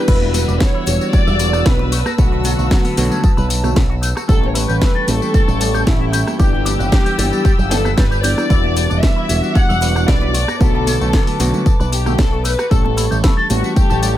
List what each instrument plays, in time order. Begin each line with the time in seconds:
Already playing: violin section B4
0.07 picked electric bass E1, tine electric piano E3, string section G3 F#5 E6, clean electric guitar E4, kick, crash, tambourine, cabasa
0.22 clean electric guitar E5, muted conga, cabasa
0.34 clean electric guitar B3, open hi-hat, tambourine, high conga, cabasa
0.48 picked electric bass E1, clean electric guitar D4, tambourine, muted conga, cabasa
0.60 clean electric guitar B3, violin section C#5, kick, snare, tambourine, cabasa
0.75 clean electric guitar E4, cabasa
0.86 picked electric bass E1, tine electric piano E3 G3 B3 D4 F#4, clean electric guitar E3, open hi-hat, tambourine, muted conga, high conga, cabasa
1.01 clean electric guitar F#4, tambourine, cabasa
1.13 clean electric guitar E3, violin section D5, muted picked electric bass stroke, kick, tambourine, muted conga, cabasa
1.27 picked electric bass E1, clean electric guitar E5, tambourine, low conga, cabasa
1.39 tine electric piano E3 G3 B3 D4 F#4, clean electric guitar E4, open hi-hat, tambourine, cabasa
1.53 clean electric guitar D4, cross-stick, tambourine, muted conga, cabasa
1.66 picked electric bass B1, clean electric guitar E4, violin section B4, kick, snare, tambourine, cabasa
1.79 clean electric guitar B4, muted conga, cabasa
1.92 clean electric guitar A3, string section B4 A5, open hi-hat, tambourine, cabasa
2.06 clean electric guitar F#4, cross-stick, tambourine, high conga, cabasa
2.18 picked electric bass B1, tine electric piano D3 F#3 A3 B3 F#4, clean electric guitar B3, violin section F#4, kick, tambourine, muted conga, cabasa
2.32 clean electric guitar B4, cabasa
2.44 clean electric guitar F#3, open hi-hat, tambourine, muted conga, high conga, cabasa
2.58 picked electric bass B1, clean electric guitar A3, tambourine, cabasa
2.71 clean electric guitar F#3, kick, snare, tambourine, cabasa
2.85 clean electric guitar B3, open hi-hat, muted conga, cabasa
2.97 picked electric bass B1, clean electric guitar B2, tine electric piano D3 F#3 A3 B3 F#4, open hi-hat, tambourine, high conga, cabasa
3.11 clean electric guitar C#4, tambourine, muted conga, low conga, cabasa
3.23 clean electric guitar B2, kick, tambourine, cabasa
3.37 picked electric bass B1, clean electric guitar B4, tambourine, low conga, cabasa
3.50 clean electric guitar B3, open hi-hat, tambourine, muted conga, cabasa
3.63 tine electric piano D3 F#3 A3 B3 F#4, clean electric guitar A3, cross-stick, tambourine, high conga, low conga, cabasa
3.76 picked electric bass B1, clean electric guitar B3, kick, snare, tambourine, muted conga, cabasa
3.90 clean electric guitar F#4, cabasa
4.02 clean electric guitar A3, open hi-hat, tambourine, cabasa
4.16 clean electric guitar F#4, cross-stick, tambourine, muted conga, cabasa
4.28 picked electric bass A1, tine electric piano E3 G3 A3 C#4 G4, clean electric guitar A4, string section A4 G5 C#6, violin section A4, kick, tambourine, cabasa
4.42 clean electric guitar A5, muted conga, cabasa
4.48 violin section C#5
4.55 clean electric guitar E4, violin section B4, open hi-hat, tambourine, high conga, cabasa
4.68 picked electric bass A1, clean electric guitar G4, tambourine, cabasa
4.81 clean electric guitar E4, kick, snare, tambourine, muted conga, cabasa
4.95 clean electric guitar A4, cabasa
5.07 picked electric bass A1, tine electric piano E3 G3 A3 C#4 G4, clean electric guitar A3, violin section A4, open hi-hat, tambourine, muted conga, high conga, cabasa
5.21 clean electric guitar B4, tambourine, cabasa
5.34 clean electric guitar A3, muted picked electric bass stroke, kick, tambourine, cabasa
5.48 picked electric bass A1, clean electric guitar A5, tambourine, muted conga, low conga, cabasa
5.60 tine electric piano E3 G3 A3 C#4 G4, clean electric guitar A4, open hi-hat, tambourine, cabasa
5.74 clean electric guitar G4, cross-stick, tambourine, muted conga, cabasa
5.87 picked electric bass A1, violin section E4, clean electric guitar A4, kick, snare, tambourine, cabasa
6.00 clean electric guitar E5, cabasa
6.13 clean electric guitar G4, open hi-hat, tambourine, muted conga, cabasa
6.26 clean electric guitar E5, cross-stick, tambourine, high conga, cabasa
6.38 picked electric bass G1, tine electric piano E3 G3 B3 D4, clean electric guitar G4, violin section G4, string section B4 E6, kick, tambourine, muted conga, cabasa
6.53 clean electric guitar G5, cabasa
6.65 clean electric guitar D4, open hi-hat, tambourine, high conga, cabasa
6.79 picked electric bass G1, clean electric guitar F#4, tambourine, muted conga, cabasa
6.92 clean electric guitar D4, kick, snare, tambourine, cabasa
7.06 clean electric guitar G4, open hi-hat, muted conga, cabasa
7.18 picked electric bass G1, tine electric piano E3 G3 B3 D4 G4, clean electric guitar G3, open hi-hat, tambourine, high conga, cabasa
7.32 clean electric guitar A4, tambourine, low conga, cabasa
7.44 clean electric guitar G3, kick, tambourine, muted conga, cabasa
7.58 picked electric bass G1, clean electric guitar G5, tambourine, low conga, cabasa
7.70 tine electric piano E3 G3 B3 D4 G4, violin section A4, clean electric guitar G5, snare, open hi-hat, tambourine, muted conga, cabasa
7.84 clean electric guitar B4, cross-stick, tambourine, high conga, low conga, cabasa
7.97 picked electric bass G1, clean electric guitar G3, violin section B4, kick, snare, tambourine, cabasa
8.11 clean electric guitar G4, tambourine, muted conga, cabasa
8.23 tine electric piano E3 G3 B3 D4 B4, clean electric guitar G4, violin section D5, open hi-hat, tambourine, cabasa
8.37 tine electric piano E3 G3 B3 D4 G4, clean electric guitar G4, cross-stick, tambourine, muted conga, cabasa
8.49 picked electric bass E1, tine electric piano E3 G3 B3 D4 F#4, string section G3 F#5 D6, clean electric guitar E4, kick, tambourine, cabasa
8.63 clean electric guitar E5, muted conga, cabasa
8.76 clean electric guitar B3, open hi-hat, tambourine, high conga, cabasa
8.90 picked electric bass E1, clean electric guitar D4, tambourine, muted conga, cabasa
9.02 clean electric guitar B3, violin section E5, kick, snare, tambourine, cabasa
9.16 clean electric guitar E4, cabasa
9.28 picked electric bass E1, tine electric piano E3 G3 B3 D4 F#4, clean electric guitar E3, open hi-hat, tambourine, muted conga, high conga, cabasa
9.42 clean electric guitar F#4, tambourine, cabasa
9.55 clean electric guitar E3, violin section F#5, muted picked electric bass stroke, kick, tambourine, muted conga, cabasa
9.69 picked electric bass E1, clean electric guitar E5, tambourine, low conga, cabasa
9.81 tine electric piano E3 G3 B3 D4 F#4, clean electric guitar E4, open hi-hat, tambourine, cabasa
9.95 clean electric guitar D4, cross-stick, tambourine, muted conga, cabasa
10.08 picked electric bass B1, clean electric guitar E4, violin section D5, kick, snare, tambourine, cabasa
10.21 clean electric guitar B4, muted conga, cabasa
10.34 clean electric guitar A3, string section B4 A5, open hi-hat, tambourine, cabasa
10.48 clean electric guitar F#4, cross-stick, tambourine, high conga, cabasa
10.60 picked electric bass B1, tine electric piano D3 F#3 A3 B3 F#4, clean electric guitar B3, violin section A4, kick, tambourine, muted conga, cabasa
10.74 clean electric guitar B4, cabasa
10.87 clean electric guitar F#3, open hi-hat, tambourine, muted conga, high conga, cabasa
11.01 picked electric bass B1, clean electric guitar A3, tambourine, cabasa
11.13 clean electric guitar F#3, kick, snare, tambourine, cabasa
11.27 clean electric guitar B3, open hi-hat, muted conga, cabasa
11.39 picked electric bass B1, clean electric guitar B2, tine electric piano D3 F#3 A3 B3 F#4, open hi-hat, tambourine, high conga, cabasa
11.53 clean electric guitar C#4, tambourine, muted conga, low conga, cabasa
11.66 clean electric guitar B2, kick, tambourine, cabasa
11.80 picked electric bass B1, clean electric guitar B4, tambourine, low conga, cabasa
11.92 clean electric guitar B3, violin section G4, open hi-hat, tambourine, muted conga, cabasa
12.06 tine electric piano D3 F#3 A3 B3 F#4, clean electric guitar A3, cross-stick, tambourine, high conga, low conga, cabasa
12.18 picked electric bass B1, clean electric guitar B3, violin section A4, kick, snare, tambourine, muted conga, cabasa
12.32 clean electric guitar F#4, cabasa
12.44 clean electric guitar A3, violin section B4, open hi-hat, tambourine, cabasa
12.58 clean electric guitar F#4, cross-stick, tambourine, muted conga, cabasa
12.70 picked electric bass A1, tine electric piano E3 G3 A3 C#4 G4, violin section A4, clean electric guitar A4, string section A4 C#6, kick, tambourine, cabasa
12.84 clean electric guitar A5, muted conga, cabasa
12.97 clean electric guitar E4, open hi-hat, tambourine, high conga, cabasa
13.11 picked electric bass A1, clean electric guitar G4, tambourine, cabasa
13.23 clean electric guitar E4, kick, snare, tambourine, muted conga, cabasa
13.37 clean electric guitar A4, cabasa
13.49 picked electric bass A1, tine electric piano E3 G3 A3 C#4 G4, clean electric guitar A3, violin section F#4, open hi-hat, tambourine, muted conga, high conga, cabasa
13.63 clean electric guitar B4, tambourine, cabasa
13.76 clean electric guitar A3, violin section G4, muted picked electric bass stroke, kick, tambourine, cabasa
13.90 picked electric bass A1, clean electric guitar A5, tambourine, muted conga, low conga, cabasa
14.02 tine electric piano E3 G3 A3 C#4 G4, clean electric guitar A4, open hi-hat, tambourine, cabasa